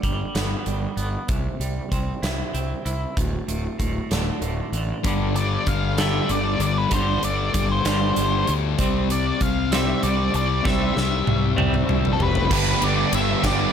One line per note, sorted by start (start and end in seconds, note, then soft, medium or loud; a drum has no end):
0.00 0.22 G1 medium
0.00 0.97 G2 medium
0.00 1.29 D3 medium
0.00 0.65 G3 medium
0.00 kick medium
0.00 closed hi-hat medium
0.35 0.54 G1 medium
0.35 0.96 B3 medium
0.35 snare medium
0.35 closed hi-hat medium
0.66 0.85 G1 medium
0.66 1.29 G3 medium
0.66 closed hi-hat soft
0.97 1.16 G1 medium
0.97 1.29 B3 medium
0.97 closed hi-hat soft
1.28 1.48 C2 medium
1.28 2.85 C3 medium
1.28 kick loud
1.28 closed hi-hat medium
1.60 1.79 C2 medium
1.60 3.17 G3 medium
1.60 closed hi-hat medium
1.91 2.10 C2 medium
1.91 2.53 C4 medium
1.91 kick medium
1.91 closed hi-hat medium
2.22 2.42 C2 medium
2.22 2.84 E4 medium
2.22 snare medium
2.22 closed hi-hat medium
2.54 2.73 C2 medium
2.54 3.17 C4 medium
2.54 closed hi-hat medium
2.85 3.04 C2 medium
2.85 3.17 E4 medium
2.85 closed hi-hat medium
3.17 3.36 D1 medium
3.17 4.73 D2 medium
3.17 kick medium
3.17 closed hi-hat medium
3.48 3.67 D1 medium
3.48 3.78 A2 medium
3.48 closed hi-hat medium
3.79 3.98 D1 medium
3.79 4.41 A2 medium
3.79 kick medium
3.79 closed hi-hat medium
4.11 4.30 D1 medium
4.11 4.72 D3 medium
4.11 snare medium
4.11 closed hi-hat medium
4.41 4.60 D1 medium
4.41 5.04 A2 medium
4.41 closed hi-hat medium
4.72 4.91 A1 medium
4.72 5.03 D3 medium
4.72 closed hi-hat medium
5.03 5.57 G1 loud
5.03 6.27 G2 medium
5.03 5.34 G2 medium
5.03 5.34 D3 loud
5.03 6.28 D3 loud
5.03 5.34 G3 medium
5.03 6.31 G3 medium
5.03 kick loud
5.03 closed hi-hat medium
5.35 5.64 G2 medium
5.35 5.64 D3 medium
5.35 5.68 D5 medium
5.35 closed hi-hat medium
5.67 6.19 G1 medium
5.67 5.95 G2 medium
5.67 5.95 D3 medium
5.67 5.99 F5 medium
5.67 kick medium
5.67 closed hi-hat medium
5.98 6.58 G2 medium
5.98 6.59 D3 medium
5.98 6.59 G3 loud
5.98 6.31 E5 loud
5.98 snare loud
5.98 closed hi-hat medium
6.28 6.56 G1 medium
6.28 6.89 G2 medium
6.28 6.90 D3 medium
6.28 6.94 G3 medium
6.28 6.60 D5 loud
6.28 closed hi-hat medium
6.60 6.86 G1 medium
6.60 6.88 G2 medium
6.60 6.89 D3 medium
6.60 6.78 D5 medium
6.60 closed hi-hat medium
6.78 6.93 B4 medium
6.91 7.18 G1 loud
6.91 8.14 G2 medium
6.91 7.21 G2 medium
6.91 7.21 D3 loud
6.91 8.15 D3 medium
6.91 7.21 G3 medium
6.91 8.19 G3 medium
6.91 7.22 C5 medium
6.91 kick loud
6.91 closed hi-hat medium
7.22 7.49 G1 medium
7.22 7.51 G2 medium
7.22 7.51 D3 medium
7.22 7.53 D5 medium
7.22 closed hi-hat medium
7.54 7.81 G1 medium
7.54 7.82 G2 medium
7.54 7.82 D3 medium
7.54 7.72 D5 medium
7.54 kick medium
7.54 closed hi-hat medium
7.72 7.85 C5 medium
7.85 8.11 G1 medium
7.85 8.46 G2 medium
7.85 8.46 D3 medium
7.85 8.46 G3 loud
7.85 8.52 C5 medium
7.85 snare loud
7.85 closed hi-hat medium
8.15 8.43 G1 medium
8.15 8.76 G2 medium
8.15 8.77 D3 medium
8.15 8.80 G3 medium
8.15 closed hi-hat medium
8.47 8.74 D2 medium
8.47 8.75 G2 medium
8.47 8.76 D3 medium
8.47 closed hi-hat medium
8.78 9.31 C2 loud
8.78 10.01 C3 medium
8.78 9.08 C3 medium
8.78 9.08 G3 medium
8.78 10.04 G3 medium
8.78 9.08 C4 loud
8.78 10.02 C4 medium
8.78 kick loud
8.78 closed hi-hat medium
9.10 9.38 C3 medium
9.10 9.38 G3 medium
9.10 9.40 D5 medium
9.10 closed hi-hat medium
9.41 9.93 C2 medium
9.41 9.69 C3 medium
9.41 9.69 G3 medium
9.41 9.70 F5 medium
9.41 kick medium
9.41 closed hi-hat medium
9.72 10.32 C3 medium
9.72 10.32 G3 loud
9.72 10.32 C4 loud
9.72 10.03 E5 loud
9.72 snare loud
9.72 closed hi-hat medium
10.03 10.29 C2 medium
10.03 10.63 C3 medium
10.03 10.65 G3 medium
10.03 10.65 C4 medium
10.03 10.32 D5 medium
10.03 closed hi-hat medium
10.34 10.60 C2 medium
10.34 10.62 C3 medium
10.34 10.62 G3 medium
10.34 10.66 D5 loud
10.34 closed hi-hat medium
10.64 10.91 C2 loud
10.64 11.86 C3 medium
10.64 10.94 C3 medium
10.64 10.94 G3 loud
10.64 11.87 G3 medium
10.64 10.94 C4 loud
10.64 11.88 C4 loud
10.64 12.16 E5 medium
10.64 kick loud
10.64 snare medium
10.96 11.22 C2 medium
10.96 11.24 C3 medium
10.96 11.24 G3 medium
10.96 snare medium
11.27 11.53 C2 loud
11.27 11.55 C3 medium
11.27 11.55 G3 medium
11.27 high tom medium
11.57 11.84 C2 medium
11.57 12.17 C3 medium
11.57 12.17 G3 loud
11.57 12.18 C4 loud
11.57 mid tom medium
11.74 mid tom medium
11.88 12.15 C2 medium
11.88 12.48 C3 medium
11.88 12.49 G3 medium
11.88 12.50 C4 medium
11.88 mid tom medium
12.05 floor tom medium
12.13 12.20 A4 medium
12.19 12.46 F1 medium
12.19 12.47 C3 medium
12.19 12.47 G3 medium
12.19 12.52 B4 medium
12.19 floor tom medium
12.35 floor tom medium
12.50 12.72 G1 loud
12.50 13.12 G2 medium
12.50 13.12 D3 medium
12.50 12.82 G3 loud
12.50 12.82 B3 loud
12.50 12.81 D4 loud
12.50 12.79 G4 medium
12.50 12.84 B4 medium
12.50 kick loud
12.50 crash loud
12.80 13.03 G1 medium
12.80 13.43 G3 medium
12.80 13.43 B3 medium
12.80 13.42 D4 medium
12.80 13.41 G4 medium
12.80 13.11 D5 medium
12.80 ride medium
13.13 13.34 G1 medium
13.13 13.45 E5 medium
13.13 ride medium
13.42 13.65 G1 loud
13.42 13.73 G2 medium
13.42 13.73 D3 medium
13.42 13.72 G3 medium
13.42 13.73 B3 medium
13.42 13.73 D4 medium
13.42 13.73 G4 medium
13.42 kick medium
13.42 snare loud
13.42 ride medium
13.47 13.73 D5 medium